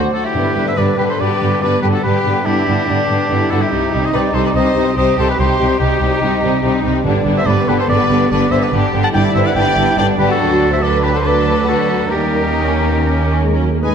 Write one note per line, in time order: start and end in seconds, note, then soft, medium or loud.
0.00 0.14 D3 medium
0.00 0.10 F#3 medium
0.00 0.12 F#4 medium
0.00 0.13 C5 medium
0.00 0.11 F#5 medium
0.14 0.24 F#4 medium
0.14 0.24 A4 medium
0.24 0.66 E4 soft
0.24 0.66 G4 medium
0.35 0.94 G2 medium
0.35 0.43 G2 soft
0.35 0.55 D3 soft
0.35 0.55 G3 soft
0.35 0.56 B3 soft
0.35 0.56 D4 soft
0.35 1.16 B4 medium
0.55 0.63 G2 soft
0.55 0.76 D3 soft
0.55 0.77 G3 soft
0.55 0.76 B3 soft
0.55 0.76 D4 soft
0.67 0.71 C5 soft
0.67 0.79 E5 medium
0.77 0.85 G2 soft
0.77 0.97 D3 soft
0.77 0.97 G3 soft
0.77 0.97 B3 soft
0.77 0.97 D4 soft
0.77 0.85 B4 soft
0.77 0.98 D5 medium
0.98 1.06 G2 soft
0.98 1.19 D3 soft
0.98 1.19 G3 soft
0.98 1.19 B3 soft
0.98 1.18 D4 soft
0.98 1.08 G4 soft
0.98 1.04 B4 medium
1.09 1.19 A4 soft
1.09 1.22 C5 medium
1.19 1.27 G2 soft
1.19 1.40 D3 soft
1.19 1.41 G3 soft
1.19 1.40 B3 soft
1.19 1.40 D4 soft
1.19 1.62 G4 medium
1.19 1.61 B4 medium
1.19 1.61 D5 medium
1.41 1.49 G2 soft
1.41 1.61 D3 soft
1.41 1.61 G3 soft
1.41 1.61 B3 soft
1.41 1.61 D4 soft
1.62 1.70 G2 soft
1.62 1.83 D3 soft
1.62 1.82 G3 soft
1.62 2.04 B3 soft
1.62 1.81 B3 soft
1.62 1.81 D4 soft
1.62 1.82 B4 medium
1.62 1.82 D5 medium
1.82 1.91 G2 soft
1.82 2.03 D3 soft
1.82 2.03 G3 soft
1.82 2.03 B3 soft
1.82 2.02 D4 soft
1.82 1.87 G4 soft
1.82 1.87 B4 medium
1.93 2.03 F#4 soft
1.93 2.03 A4 medium
2.03 2.11 G2 soft
2.03 2.23 D3 soft
2.03 2.23 G3 soft
2.03 2.23 B3 soft
2.03 2.23 D4 soft
2.03 2.45 G4 soft
2.03 2.45 G4 medium
2.03 2.48 B4 medium
2.24 2.33 G2 soft
2.24 2.45 D3 soft
2.24 2.45 G3 soft
2.24 2.45 B3 soft
2.24 2.45 D4 soft
2.45 2.53 G2 soft
2.45 2.67 D3 soft
2.45 2.67 G3 soft
2.45 2.65 B3 soft
2.45 3.49 D4 medium
2.45 2.65 D4 soft
2.45 2.87 E4 medium
2.45 3.52 G4 medium
2.67 2.75 G2 soft
2.67 2.87 D3 soft
2.67 2.87 G3 soft
2.67 2.86 B3 soft
2.67 2.86 D4 soft
2.87 2.96 G2 soft
2.87 3.08 D3 soft
2.87 3.08 G3 soft
2.87 3.07 B3 soft
2.87 3.08 D4 soft
2.87 3.30 D4 soft
3.08 3.16 G2 soft
3.08 3.29 D3 soft
3.08 3.30 G3 soft
3.08 3.27 B3 soft
3.08 3.27 D4 soft
3.29 3.37 G2 soft
3.29 3.51 D3 soft
3.29 3.51 G3 soft
3.29 3.50 B3 soft
3.29 3.49 D4 soft
3.29 3.72 E4 soft
3.51 3.59 G2 soft
3.51 3.72 D3 soft
3.51 3.71 G3 soft
3.51 3.71 B3 soft
3.51 3.71 D4 soft
3.51 3.61 F#4 soft
3.51 3.63 A4 medium
3.61 4.03 E4 soft
3.61 4.07 G4 medium
3.72 3.80 C2 medium
3.72 3.92 C3 soft
3.72 3.92 G3 soft
3.72 3.92 C4 soft
3.72 4.95 D#4 medium
3.72 3.92 D#4 soft
3.93 4.01 C2 soft
3.93 4.12 C3 soft
3.93 4.12 G3 soft
3.93 4.13 C4 soft
3.93 4.13 D#4 soft
4.03 4.07 C5 medium
4.03 4.17 D#5 medium
4.13 4.21 C2 soft
4.13 4.33 C3 soft
4.13 4.33 G3 soft
4.13 4.34 C4 soft
4.13 4.33 D#4 soft
4.13 4.21 B4 medium
4.13 4.36 D5 medium
4.33 4.41 C2 soft
4.33 4.55 C3 soft
4.33 4.55 G3 soft
4.33 4.54 C4 soft
4.33 4.54 D#4 soft
4.33 4.45 A4 medium
4.33 4.45 C5 medium
4.45 4.49 B4 medium
4.45 4.56 D5 medium
4.54 4.62 C2 medium
4.54 4.76 C3 soft
4.54 4.76 G3 soft
4.54 4.75 C4 soft
4.54 4.75 D#4 soft
4.54 4.96 C5 medium
4.54 4.97 D#5 medium
4.76 4.84 C2 medium
4.76 4.96 C3 soft
4.76 4.97 G3 soft
4.76 4.96 C4 soft
4.76 4.96 D#4 soft
4.97 5.05 C2 soft
4.97 5.18 C3 soft
4.97 5.18 G3 soft
4.97 5.18 C4 soft
4.97 5.17 D#4 soft
4.97 6.20 G4 medium
4.97 5.18 C5 medium
4.97 5.18 D#5 medium
5.17 5.25 C2 soft
5.17 5.38 C3 soft
5.17 5.39 G3 soft
5.17 5.39 C4 soft
5.17 5.38 D#4 soft
5.17 5.29 A4 medium
5.17 5.29 C5 medium
5.29 5.38 G4 soft
5.29 5.39 B4 medium
5.38 5.46 C2 medium
5.38 5.58 C3 medium
5.38 5.59 G3 medium
5.38 5.58 C4 soft
5.38 5.58 D#4 soft
5.38 5.80 G4 medium
5.38 5.79 C5 medium
5.59 5.67 C2 soft
5.59 5.78 C3 soft
5.59 5.79 G3 soft
5.59 5.79 C4 soft
5.59 5.80 D#4 soft
5.80 5.88 C2 medium
5.80 5.99 C3 soft
5.80 5.99 G3 soft
5.80 6.00 C4 soft
5.80 6.01 D#4 soft
5.80 6.83 D#4 medium
5.80 6.82 G4 medium
6.00 6.09 C2 medium
6.00 6.20 C3 soft
6.00 6.20 G3 soft
6.00 6.22 C4 soft
6.00 6.21 D#4 soft
6.21 6.29 C2 medium
6.21 6.41 C3 soft
6.21 6.41 G3 soft
6.21 6.42 C4 medium
6.21 6.63 D#4 medium
6.21 6.42 D#4 medium
6.43 6.51 C2 medium
6.43 6.62 C3 soft
6.43 6.62 G3 soft
6.43 6.62 C4 soft
6.43 6.62 D#4 soft
6.63 6.71 C2 soft
6.63 6.83 C3 soft
6.63 6.83 G3 medium
6.63 6.83 C4 medium
6.63 6.83 D#4 medium
6.63 7.05 D#4 medium
6.84 6.92 C2 medium
6.84 7.05 C3 medium
6.84 7.04 G3 soft
6.84 7.05 C4 soft
6.84 7.05 D#4 soft
7.05 7.13 G1 medium
7.05 7.64 G2 medium
7.05 7.25 D3 medium
7.05 7.25 G3 medium
7.05 7.24 B3 medium
7.05 7.46 D4 medium
7.05 7.24 D4 medium
7.25 7.34 G1 medium
7.25 7.47 D3 soft
7.25 7.47 G3 soft
7.25 7.46 B3 soft
7.25 7.46 D4 soft
7.37 7.47 C5 medium
7.37 7.48 E5 medium
7.46 7.55 G1 medium
7.46 7.67 D3 medium
7.46 7.67 G3 medium
7.46 8.70 B3 medium
7.46 7.66 B3 soft
7.46 7.66 D4 soft
7.46 7.69 B4 medium
7.46 7.70 D5 medium
7.67 7.76 G1 medium
7.67 7.87 D3 soft
7.67 7.88 G3 soft
7.67 7.88 B3 soft
7.67 7.88 D4 soft
7.67 7.73 G4 medium
7.67 7.79 B4 medium
7.79 7.89 A4 medium
7.79 7.89 C5 medium
7.89 7.97 G1 medium
7.89 8.08 D3 medium
7.89 8.09 G3 medium
7.89 8.10 B3 medium
7.89 8.10 D4 medium
7.89 8.30 B4 medium
7.89 8.30 D5 medium
8.09 8.18 G1 medium
8.09 8.30 D3 soft
8.09 8.30 G3 soft
8.09 8.30 B3 soft
8.09 8.31 D4 soft
8.31 8.39 G1 medium
8.31 8.51 D3 soft
8.31 8.51 G3 medium
8.31 8.50 B3 medium
8.31 8.50 D4 medium
8.31 8.52 B4 medium
8.31 8.53 D5 medium
8.51 8.60 G1 medium
8.51 8.71 D3 medium
8.51 8.71 G3 medium
8.51 8.72 B3 soft
8.51 8.72 D4 soft
8.51 8.62 C5 medium
8.51 8.65 E5 medium
8.62 8.72 B4 medium
8.62 8.73 D5 medium
8.72 8.81 G1 medium
8.72 8.92 D3 medium
8.72 8.92 G3 medium
8.72 8.93 B3 medium
8.72 8.93 D4 medium
8.72 9.13 G4 medium
8.93 9.01 G1 medium
8.93 9.14 D3 soft
8.93 9.14 G3 soft
8.93 9.12 B3 medium
8.93 9.12 D4 medium
9.03 9.08 F#5 medium
9.03 9.09 A5 medium
9.13 9.22 G1 medium
9.13 9.34 D3 medium
9.13 9.34 G3 medium
9.13 9.33 B3 soft
9.13 9.34 D4 medium
9.13 9.97 E4 medium
9.13 9.35 D5 medium
9.13 9.24 G5 medium
9.34 9.43 G1 medium
9.34 9.55 D3 medium
9.34 9.55 G3 soft
9.34 9.56 B3 soft
9.34 9.55 D4 soft
9.34 9.39 C5 medium
9.34 9.49 E5 medium
9.44 9.53 D5 medium
9.44 9.55 F#5 medium
9.55 9.64 G1 medium
9.55 9.76 D3 soft
9.55 9.76 G3 medium
9.55 9.77 B3 medium
9.55 9.77 D4 medium
9.55 9.97 D5 medium
9.55 9.97 G5 medium
9.77 9.85 G1 medium
9.77 9.97 D3 soft
9.77 9.97 G3 soft
9.77 9.97 B3 soft
9.77 9.96 D4 soft
9.98 10.06 G1 medium
9.98 10.17 D3 soft
9.98 10.17 G3 soft
9.98 10.18 B3 soft
9.98 10.19 D4 medium
9.98 10.41 D4 medium
9.98 10.06 D5 medium
9.98 10.08 G5 medium
10.18 10.27 G1 soft
10.18 10.39 D3 medium
10.18 10.40 G3 medium
10.18 10.40 B3 soft
10.18 10.40 D4 soft
10.18 10.30 G4 medium
10.18 10.30 B4 medium
10.29 10.72 F#4 medium
10.29 10.72 A4 medium
10.40 12.07 D2 medium
10.40 10.79 D3 medium
10.40 10.79 F#3 medium
10.40 10.80 D4 medium
10.40 10.82 F#4 medium
10.71 10.82 C5 medium
10.71 10.84 E5 medium
10.81 11.22 D3 soft
10.81 11.22 F#3 medium
10.81 11.23 D4 soft
10.81 11.03 A4 medium
10.81 12.11 B4 medium
10.81 11.05 D5 medium
11.03 11.14 G4 medium
11.03 11.18 B4 medium
11.14 11.23 A4 soft
11.14 11.28 C5 medium
11.23 11.66 D3 soft
11.23 11.65 F#3 soft
11.23 11.66 D4 soft
11.23 11.66 A4 medium
11.23 11.68 D5 medium
11.67 12.09 D3 soft
11.67 12.09 F#3 soft
11.67 11.89 D4 soft
11.67 12.10 F#4 medium
11.67 12.10 A4 medium
11.89 12.11 B3 soft
12.10 13.60 D#2 medium
12.10 12.50 G3 soft
12.10 13.60 A#3 soft
12.10 13.63 C#4 soft
12.10 13.38 D#4 soft
12.10 13.38 G4 medium
12.10 13.62 A#4 soft
12.54 12.64 D#4 medium
12.66 12.87 C#4 soft
12.89 12.99 A#3 soft
12.98 13.09 B3 soft
13.09 13.51 C#4 medium
13.42 13.54 G#3 medium
13.52 13.73 C#4 soft
13.57 13.70 F#3 soft
13.71 13.77 G#3 soft
13.71 13.84 A#3 soft
13.83 13.95 G#1 medium
13.83 13.95 G#2 soft
13.83 13.95 D#3 medium
13.83 13.95 G#3 medium
13.83 13.95 D#4 soft
13.83 13.92 B4 soft
13.83 13.95 B4 medium
13.83 13.95 B4 soft
13.83 13.95 D#5 soft
13.83 13.95 G#5 soft
13.83 13.95 B5 soft